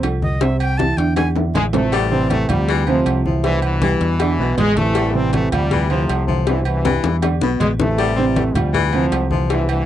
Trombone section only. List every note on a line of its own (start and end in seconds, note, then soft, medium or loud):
1.55 1.63 G#3 loud
1.73 2.46 C3 medium
1.73 2.46 E3 medium
1.73 2.09 A3 loud
2.11 2.29 C4 loud
2.31 2.48 A3 loud
2.49 2.87 C3 medium
2.49 2.87 G3 loud
2.87 3.41 A2 medium
2.87 3.41 C3 medium
2.87 3.23 F3 loud
3.44 3.63 G2 medium
3.44 3.63 B2 medium
3.44 3.62 E3 loud
3.63 4.17 G2 medium
3.63 4.54 B2 medium
3.63 4.54 E3 loud
4.58 4.77 G#3 loud
4.76 5.49 C3 medium
4.76 5.49 E3 medium
4.76 5.12 A3 loud
5.14 5.33 C4 loud
5.33 5.51 A3 loud
5.52 5.90 C3 medium
5.52 5.88 G3 loud
5.90 6.44 A2 medium
5.90 6.44 C3 medium
5.90 6.26 F3 medium
6.46 6.65 G2 medium
6.46 6.66 B2 medium
6.46 6.64 E3 loud
6.65 7.30 G2 medium
6.65 7.30 B2 medium
6.65 7.29 E3 loud
7.59 7.68 G#3 loud
7.79 8.52 C3 medium
7.79 8.52 E3 medium
7.79 8.14 A3 loud
8.16 8.25 C4 loud
8.35 8.53 A3 medium
8.54 8.94 C3 medium
8.54 8.93 G3 medium
8.93 9.47 A2 medium
8.93 9.47 C3 medium
8.93 9.28 F3 medium
9.50 9.69 G2 medium
9.50 9.69 B2 medium
9.50 9.67 E3 loud
9.69 9.86 G2 medium
9.69 9.86 B2 medium
9.69 9.86 E3 loud